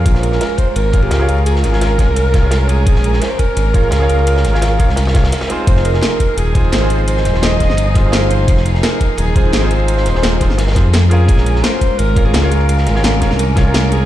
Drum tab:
RD |x---x---x---x---x---x-x-x---x-x-|x---x---x---x---x---x---x---x---|x---x---x---x---x---x-x-x---x-x-|x---x---x---x---x-x-x-x-x-x-x---|
HH |x---x---x---x---x---x---x---x---|x---x---x---x---x---x---x---x---|x---x---x---x---x---x---x---x---|x---x---x---x---x---x---x---x---|
SD |--o---o-o---------------o-------|--o-o-o-o---o-------o---o-------|--o---o-o---------------o-------|--o-o-o-o-----o-o-o-o-o-o-o-----|
BD |o-----------o-------o-----------|------------o-------o-----------|o-----------o-------o-----------|------------o-------o-----------|

RD |x---x---x---x---x---x-x-x---x-x-|x---x---x---x---x---x---x---x---|x---x---x---x---x---x-x-x---x-x-|x---x---x---x---x-xxx---x---x---|
HH |x---x---x---x---x---x---x---x---|x---x---x---x---x---x---x---x---|x---x---x---x---x---x---x---x---|x---x---x---x---x---x---x---x---|
SD |--o---o-o---------------o-------|--o-o-o-o---o-o-----o---o-------|--o---o-o---------------o-------|--o-o-o-o---o-o-o-ooo---o-------|
BD |o-----------o-------o-----------|------------o-------o-----------|o-----------o-------o-----------|------------o-------o-----------|

RD |x---x---x---x---x---x-x-x---x-x-|x---x---x---x---x---x---x---x---|
HH |x---x---x---x---x---x---x---x---|x---x---x---x---x---x---x---x---|
SD |--o---o-o---------------o-------|--o-o-o-o---o-o-----o---o-------|
BD |o-----------o-------o-----------|------------o-------o-----------|